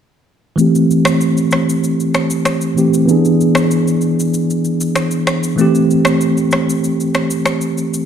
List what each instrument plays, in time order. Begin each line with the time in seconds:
0.56 tine electric piano E3 A3 C4, shaker
0.61 tine electric piano G4
0.75 shaker
0.91 shaker
1.05 finger snap, cross-stick, shaker
1.21 shaker
1.37 shaker
1.51 finger snap, cross-stick, shaker
1.70 shaker
1.84 shaker
2.00 shaker
2.14 finger snap, cross-stick, shaker
2.30 shaker
2.45 finger snap, cross-stick, shaker
2.61 shaker
2.76 tine electric piano E3 A3 C4 G4, shaker
2.94 shaker
3.06 tine electric piano E3 B3 D4, shaker
3.11 tine electric piano G#4
3.25 shaker
3.41 shaker
3.55 finger snap, cross-stick, shaker
3.71 shaker
3.88 shaker
4.01 shaker
4.20 shaker
4.34 shaker
4.50 shaker
4.65 shaker
4.81 shaker
4.96 finger snap, cross-stick, shaker
5.11 shaker
5.27 finger snap, cross-stick, shaker
5.43 shaker
5.56 tine electric piano E3 A3 C4, shaker
5.61 tine electric piano G4
5.75 shaker
5.91 shaker
6.05 finger snap, cross-stick, shaker
6.21 shaker
6.37 shaker
6.51 finger snap, cross-stick, shaker
6.70 shaker
6.84 shaker
7.00 shaker
7.14 finger snap, cross-stick, shaker
7.31 shaker
7.46 finger snap, cross-stick, shaker
7.61 shaker
7.78 shaker
7.94 shaker